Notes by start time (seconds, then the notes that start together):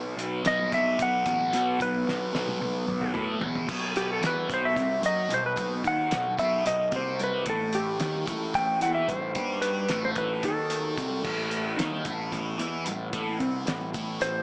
Already playing: B1 B2 F#3 B3
0.17 B1, closed hi-hat
0.44 B1 B2 F#3 B3 D#5, snare, closed hi-hat
0.59 high conga, low conga
0.71 B1 F#3 B3 E5, kick, snare, closed hi-hat
0.99 B1 F#5, kick, closed hi-hat
1.26 A1 F#3 B3, kick, closed hi-hat, high conga
1.39 low conga
1.51 B2 F#3 B3, closed hi-hat, low conga
1.79 B1 B2 F#3 B3 B4, kick, closed hi-hat, high conga
1.93 low conga
2.06 B1, snare
2.32 B1 B2 F#3 B3, snare, low conga
2.46 high tom, high conga, low conga
2.59 B1 F#3 B3, high tom
2.87 B1, mid tom
3.01 mid tom, high conga
3.13 A2 F#3 B3, mid tom, high conga
3.26 high conga
3.40 E2 B2 F#3 B3, floor tom, low conga
3.53 floor tom, low conga
3.67 B1 B2 D#3 F#3 B3, kick, crash, high conga
3.94 G4, closed hi-hat, low conga
4.13 A4
4.20 E2 E3 E4, snare, closed hi-hat
4.27 B4
4.34 high conga, low conga
4.49 B1 B2 B3, kick, snare, closed hi-hat
4.54 C5
4.65 E5
4.76 C2 C3 C4, kick, snare, closed hi-hat
5.01 F#2 F#3 F#4, closed hi-hat, high conga
5.06 D#5
5.29 B1 B2, closed hi-hat, low conga
5.34 C5
5.46 B4
5.56 B1 B2 B3, kick, closed hi-hat, high conga
5.83 D#2 D#3 D#4, kick, closed hi-hat, low conga
5.87 F#5
6.10 B1 B2, snare, closed hi-hat
6.25 high conga, low conga
6.38 B1 B2 B3 E5, kick, closed hi-hat
6.65 B1 B2 D#5, closed hi-hat
6.91 C2 C3 C4, kick, closed hi-hat, high conga
6.96 C5
7.19 closed hi-hat, low conga
7.24 B4
7.45 A1 A2 A3, kick, closed hi-hat, high conga
7.50 A4
7.73 G4, closed hi-hat
7.99 D#2 D#3 D#4, snare, closed hi-hat
8.15 high conga, low conga
8.25 A1 A2 A3, kick, closed hi-hat
8.54 A1 A2 A3 G5, kick, closed hi-hat
8.81 E2 E3 E4 F#5, closed hi-hat, high conga
8.95 E5
9.08 A1 A2 C5, kick, closed hi-hat, low conga
9.35 G2 G3 G4, kick, closed hi-hat, high conga
9.62 B4, closed hi-hat
9.89 A1 A2 A3, snare, closed hi-hat
10.05 C5, high conga, low conga
10.15 A1 A2 A3 B4, kick, closed hi-hat
10.43 D#2 D#3 D#4 A4, kick, snare, closed hi-hat
10.57 low conga
10.70 closed hi-hat, high conga
10.84 high conga
10.97 C2 C3 C4, kick, snare, closed hi-hat, low conga
11.10 low conga
11.23 A1 A2 B2 E3 A3, kick, crash, high conga
11.51 closed hi-hat
11.77 D#2 D#3 D#4, snare, closed hi-hat
11.91 high conga, low conga
12.05 A1 A2 A3, kick, closed hi-hat
12.32 A1 A2 A3, kick, snare, closed hi-hat
12.58 E2 E3 E4, closed hi-hat, high conga
12.85 A1 A2, closed hi-hat, low conga
13.13 A1 A2 A3, kick, closed hi-hat, high conga
13.39 C2 C3 C4, kick, closed hi-hat
13.66 A1 A2, snare, closed hi-hat
13.81 high conga, low conga
13.94 A1 A2 A3, kick, closed hi-hat
14.20 A1 A2 C5, closed hi-hat